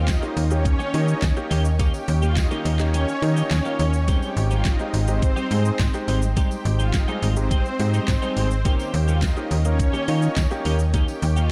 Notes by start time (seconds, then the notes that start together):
Already playing: D#2 A#4 D#5 G5 C#6
0.08 D#4 D#5, kick, snare, clap, closed hi-hat, tambourine, shaker
0.22 A#3 C#4 D#4 G4, muted clean electric guitar stroke, shaker
0.37 D#2, open hi-hat, tambourine, shaker
0.51 A#3 C#4 D#4 G4 C#5, muted clean electric guitar stroke, shaker
0.65 C#4 C#5, muted clean electric guitar stroke, kick, closed hi-hat, shaker
0.79 D#3 A#3 C#4 G4, shaker
0.93 D#3 A#3 C#4 D#4 G4 D#5, open hi-hat, tambourine, shaker
1.08 shaker
1.22 D#2, muted clean electric guitar stroke, kick, snare, clap, closed hi-hat, tambourine, shaker
1.36 A#3 C#4 D#4 G4, muted clean electric guitar stroke, shaker
1.50 D#2 D#3 A#3 C#4 G4, open hi-hat, tambourine, shaker
1.65 muted clean electric guitar stroke, tambourine, shaker
1.79 D#3 A#3 C#4 D#4 G4, kick, closed hi-hat, tambourine, shaker
1.94 G4 G5, muted clean electric guitar stroke, tambourine, shaker
2.08 D#2, muted clean electric guitar stroke, open hi-hat, tambourine, shaker
2.22 D#3 A#3 C#4 F4 G4 F5, shaker
2.37 D#4 D#5, muted clean electric guitar stroke, kick, snare, clap, closed hi-hat, tambourine, shaker
2.51 D#3 A#3 C#4 D#4 G4, shaker
2.65 D#2 D#3 A#3 C#4 G4, open hi-hat, tambourine, shaker
2.79 A#3 C#4 D#4 G4 C#5, muted clean electric guitar stroke, clap, tambourine, shaker
2.93 D#3 A#3 C#4 G4 C#5, closed hi-hat, shaker
3.08 muted clean electric guitar stroke, shaker
3.22 D#3 A#3 C#4 D#4 G4 D#5, muted clean electric guitar stroke, open hi-hat, tambourine, shaker
3.36 D#3 A#3 C#4 G4, tambourine, shaker
3.51 D#2 C#4 C#5, muted clean electric guitar stroke, snare, clap, closed hi-hat, tambourine, shaker
3.65 D#3 A#3 C#4 D#4 F4 G4, shaker
3.79 D#2 D#3 A#3 C#4 G4 C#5, open hi-hat, tambourine, shaker
3.93 muted clean electric guitar stroke, tambourine, shaker
4.08 G3 G#3 C4 D#4 G4 C6, kick, closed hi-hat, tambourine, shaker
4.22 G4 G5, tambourine, shaker
4.36 G#1, muted clean electric guitar stroke, open hi-hat, tambourine, shaker
4.51 G3 C4 D#4 F4 G4 F5, shaker
4.65 D#4 D#5, muted clean electric guitar stroke, kick, snare, clap, closed hi-hat, tambourine, shaker
4.79 G#3 C4 D#4 G4, muted clean electric guitar stroke, shaker
4.94 G#1, open hi-hat, tambourine, shaker
5.08 G#3 C4 D#4 G4 C5, muted clean electric guitar stroke, tambourine, shaker
5.22 C4 C5, muted clean electric guitar stroke, kick, closed hi-hat, shaker
5.36 G3 C4 D#4 G4, shaker
5.50 G#2 G3 G#3 C4 D#4 G4 G#4 D#5, open hi-hat, tambourine, shaker
5.65 muted clean electric guitar stroke, shaker
5.79 G#1, muted clean electric guitar stroke, kick, snare, clap, closed hi-hat, tambourine, shaker
5.94 G#3 C4 D#4 G4, muted clean electric guitar stroke, tambourine, shaker
6.08 G#1 G3 C4 D#4 G4, open hi-hat, tambourine, shaker
6.22 muted clean electric guitar stroke, tambourine, shaker
6.36 G3 G#3 C4 D#4 G4, kick, closed hi-hat, tambourine, shaker
6.51 G4 G5, muted clean electric guitar stroke, tambourine, shaker
6.65 G#1, muted clean electric guitar stroke, open hi-hat, tambourine, shaker
6.79 G3 C4 D#4 F4 G4 F5, shaker
6.94 D#4 D#5, kick, snare, clap, closed hi-hat, tambourine, shaker
7.08 G3 G#3 C4 D#4 G4 G#4, shaker
7.22 G#1 G3 C4 D#4 G4, open hi-hat, tambourine, shaker
7.36 G#3 C4 D#4 G4 C5, muted clean electric guitar stroke, tambourine, shaker
7.50 G3 C4 D#4 G4 C5, kick, closed hi-hat, shaker
7.65 muted clean electric guitar stroke, shaker
7.79 G#2 G#3 C4 D#4 G4 D#5, muted clean electric guitar stroke, open hi-hat, tambourine, shaker
7.93 G3 C4 D#4 G4, tambourine, shaker
8.08 G#1 C4 C5, muted clean electric guitar stroke, kick, snare, clap, closed hi-hat, tambourine, shaker
8.22 G3 G#3 C4 D#4 G4 G#4, shaker
8.36 G#1 G3 C4 D#4 G4 C5, open hi-hat, tambourine, shaker
8.51 muted clean electric guitar stroke, tambourine, shaker
8.65 D#3 A#3 C#4 D#4 G4 A#4 D#5 G5 C#6, kick, closed hi-hat, tambourine, shaker
8.79 G4 G5, tambourine, shaker
8.93 D#2, muted clean electric guitar stroke, open hi-hat, tambourine, shaker
9.08 D#3 A#3 C#4 F4 G4 F5, shaker
9.22 D#4 D#5, muted clean electric guitar stroke, kick, snare, clap, closed hi-hat, tambourine, shaker
9.36 A#3 C#4 D#4 G4, muted clean electric guitar stroke, shaker
9.51 D#2, open hi-hat, tambourine, shaker
9.65 A#3 C#4 D#4 A#4 C#5, muted clean electric guitar stroke, shaker
9.79 C#4 C#5, muted clean electric guitar stroke, kick, closed hi-hat, shaker
9.93 D#3 A#3 C#4 G4, shaker
10.08 D#3 A#3 C#4 D#4 F4 G4 D#5, open hi-hat, tambourine, shaker
10.22 muted clean electric guitar stroke, tambourine, shaker
10.36 D#2, muted clean electric guitar stroke, kick, snare, clap, closed hi-hat, tambourine, shaker
10.51 A#3 C#4 D#4 G4, muted clean electric guitar stroke, tambourine, shaker
10.65 D#2 D#3 A#3 C#4 G4, open hi-hat, tambourine, shaker
10.79 muted clean electric guitar stroke, tambourine, shaker
10.94 D#3 A#3 C#4 D#4 G4, kick, closed hi-hat, tambourine, shaker
11.08 G4 G5, muted clean electric guitar stroke, tambourine, shaker
11.22 D#2, muted clean electric guitar stroke, open hi-hat, tambourine, shaker
11.36 D#3 A#3 C#4 F4 G4 F5, shaker